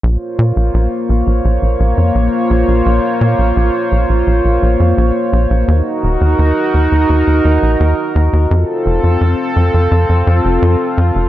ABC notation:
X:1
M:4/4
L:1/16
Q:1/4=85
K:Bbm
V:1 name="Analog synth pad"
[B,Fcd]16- | [B,Fcd]16 | [EGB]16 | [CF=A]16 |]
V:2 name="Analog synth bass" clef=bass
B,,, z B,, B,,, B,,, z B,,, B,,, B,,, B,,, B,,, F,, B,,, z B,,, B,,, | B,,, z B,, B,,, B,,, z B,,, B,,, B,,, B,,, B,,, F,, B,,, z B,,, B,,, | E,, z E,,, E,, E,, z E,, E,, E,, E,, E,, B,,, E,, z E,, E,, | F,, z F,,, F,, F,, z F,, F,, F,, F,, F,, F,,, F,, z F,, F,,, |]